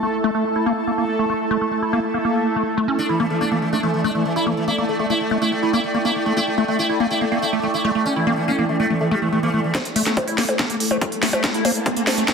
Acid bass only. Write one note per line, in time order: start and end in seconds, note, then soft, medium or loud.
0.03 0.07 A3 medium
0.24 0.31 A3 loud
0.35 0.45 A3 medium
0.56 0.66 E4 medium
0.66 0.73 A#3 loud
0.87 0.91 A#3 medium
0.98 1.05 A#3 medium
1.19 1.26 A3 medium
1.30 1.34 A3 medium
1.51 1.57 A3 loud
1.61 1.71 A3 medium
1.82 1.92 E4 medium
1.93 2.00 A#3 loud
2.14 2.18 A#3 medium
2.25 2.47 A#3 medium
2.46 2.56 A3 medium
2.56 2.63 A3 medium
2.77 2.87 A3 loud
2.88 2.98 C#4 loud
3.09 3.19 E4 medium
3.20 3.26 A#3 loud
3.41 3.45 A#3 medium
3.51 3.58 A#3 medium
3.73 3.79 A3 medium
3.83 3.87 A3 medium
4.04 4.11 A3 loud
4.15 4.25 A3 medium
4.36 4.46 E4 medium
4.47 4.53 A#3 loud
4.68 4.72 A#3 medium
4.78 4.85 A#3 medium
4.99 5.06 A3 medium
5.10 5.14 A3 medium
5.31 5.38 A3 loud
5.42 5.52 A3 medium
5.63 5.73 E4 medium
5.73 5.80 A#3 loud
5.94 5.98 A#3 medium
6.05 6.12 A#3 medium
6.26 6.33 A3 medium
6.37 6.41 A3 medium
6.58 6.64 A3 loud
6.68 6.78 A3 medium
6.89 6.99 E4 medium
7.00 7.07 A#3 loud
7.21 7.25 A#3 medium
7.32 7.38 A#3 medium
7.53 7.59 A3 medium
7.63 7.67 A3 medium
7.85 7.91 A3 loud
7.95 8.05 A3 medium
8.16 8.26 E4 medium
8.27 8.33 A#3 loud
8.48 8.52 A#3 medium
8.59 8.65 A#3 medium
8.80 8.86 A3 medium
8.90 8.94 A3 medium
9.11 9.15 A3 loud
9.22 9.29 A3 medium
9.32 9.39 A3 medium
9.43 9.50 A#3 medium
9.54 9.60 A3 medium
9.75 9.79 A3 medium
9.96 10.02 A3 loud
10.06 10.16 A3 medium
10.27 10.37 E4 medium
10.38 10.45 A#3 loud
10.59 10.63 A#3 medium
10.70 10.76 A#3 medium
10.91 10.98 A3 medium
11.01 11.05 A3 medium
11.23 11.29 A3 loud
11.33 11.43 A3 medium
11.54 11.64 E4 medium
11.65 11.71 A#3 loud
11.86 11.90 A#3 medium
11.96 12.03 A#3 medium
12.18 12.24 A3 medium
12.28 12.32 A3 medium